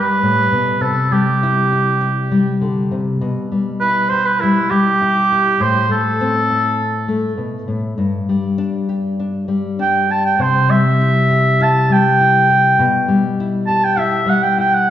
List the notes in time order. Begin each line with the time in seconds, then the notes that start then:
Already playing: G2 G3 D4 G4 B4
0.23 A2
0.52 B2
0.81 C3 A4
1.11 G3 G4
1.43 E4
1.72 E4
2.01 E4
2.32 G3
2.61 D3
2.91 C3
3.21 B2
3.52 G3
3.80 E4 B4
4.09 G4 C5
4.25 B4
4.40 G3 E4
4.70 G3 G4
5.02 E4
5.32 E4
5.60 A2 C5
5.89 A3 A4
6.21 C4
6.50 E4
7.08 A3
7.38 B2
7.68 A2
7.98 G2
8.29 G3
8.58 D4
8.89 G4
9.19 D4
9.48 G3
9.79 D4 G5
10.10 G4 A5
10.26 G5
10.39 C3 C5
10.69 G3 E5
11.01 E4
11.30 G4
11.60 E4 A5
11.89 G3 G5
12.21 E4
12.50 G4
12.79 B2
13.08 G3
13.40 E4
13.67 G4 A5
13.84 G5
13.97 E4 E5
14.26 G3 F#5
14.43 G5
14.58 E4 G5
14.74 F#5